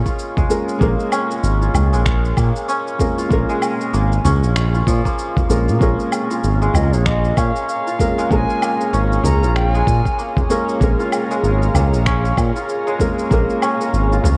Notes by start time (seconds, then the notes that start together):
Already playing: G#3 A#3 C#4 F4 A#4
0.06 F4, kick, cabasa
0.19 cabasa
0.37 G#3, kick, frame drum, cabasa
0.49 G#3 A#3 C#4 F4 A#4, cabasa
0.69 cabasa
0.79 A#1 G#3 A#3 C#4 F4, kick, cabasa
0.83 A#4
1.00 cabasa
1.12 C#4, cabasa, low woodblock
1.31 cabasa
1.44 G#1, cabasa
1.62 F4, cabasa
1.74 C#2, frame drum, cabasa, low woodblock
1.93 A#1 G#3, cabasa
2.06 finger snap, kick, cabasa
2.25 cabasa
2.37 A#2 A#3, kick, cabasa, low woodblock
2.56 cabasa
2.68 C#4, cabasa
2.87 cabasa
2.98 G#3 A#3 C#4 F4 A#4, kick, frame drum, cabasa
3.18 F4, cabasa
3.29 A#1 G#3 A#3 C#4 F4, kick, cabasa
3.33 A#4
3.49 G#3, cabasa
3.62 cabasa, low woodblock
3.81 cabasa
3.93 G#1 A#3, cabasa
4.12 cabasa
4.24 C#2 C#4, frame drum, cabasa
4.43 A#1, cabasa
4.56 finger snap, cabasa
4.74 F4, cabasa
4.87 A#2 F3, kick, cabasa
5.05 A#3, kick, cabasa
5.19 cabasa
5.36 kick, frame drum, cabasa
5.48 A#1 G#3 A#3 C#4 F4 A#4, cabasa
5.68 A#2, cabasa
5.79 A#1 G#3 A#3 C#4 F4 G#4 A#4 C#5 F5 A#5, kick, cabasa
6.00 cabasa
6.12 cabasa, low woodblock
6.30 F4, cabasa
6.43 G#1, cabasa
6.62 G#3, cabasa
6.74 C#2 D#5, frame drum, cabasa, low woodblock
6.93 A#1 C#5, cabasa
7.06 A#3 D#5, finger snap, kick, cabasa
7.25 cabasa
7.37 A#2 C#4 F5, kick, cabasa, low woodblock
7.56 cabasa
7.69 F5, cabasa
7.87 F4, cabasa
7.99 G#3 A#3 C#4 F4 A#4, kick, frame drum, cabasa
8.18 G#3, cabasa
8.29 A#1 G#3 A#3 C#4 F4 A#5, kick, cabasa
8.33 A#4 G#5
8.50 cabasa
8.62 A#3, cabasa, low woodblock
8.81 cabasa
8.93 G#1 C#4, cabasa
9.13 cabasa
9.24 C#2 A#5, frame drum, cabasa
9.43 A#1 F4, cabasa
9.56 G5, finger snap, cabasa
9.72 G#3 G#5, cabasa
9.87 A#2, kick, cabasa
10.05 kick, cabasa
10.18 A#3, cabasa
10.36 kick, frame drum, cabasa
10.49 G#3 A#3 C#4 F4 A#4, cabasa
10.69 cabasa
10.79 A#1 G#3 A#3 C#4 F4 A#4, kick, cabasa
10.99 F4, cabasa
11.12 cabasa, low woodblock
11.30 G#3, cabasa
11.43 G#1, cabasa
11.62 cabasa
11.74 C#2 A#3, frame drum, cabasa, low woodblock
11.93 A#1, cabasa
12.06 C#4, finger snap, kick, cabasa
12.25 cabasa
12.37 A#2, kick, cabasa, low woodblock
12.55 F4, cabasa
12.69 cabasa
12.87 G#3, cabasa
12.99 G#3 A#3 C#4 F4 A#4, kick, frame drum, cabasa
13.19 cabasa
13.29 A#1 G#3 A#3 C#4 F4, kick, cabasa
13.34 A#4
13.50 cabasa
13.62 C#4, cabasa, low woodblock
13.81 cabasa
13.94 G#1, cabasa
14.12 F4, cabasa
14.24 C#2, frame drum, cabasa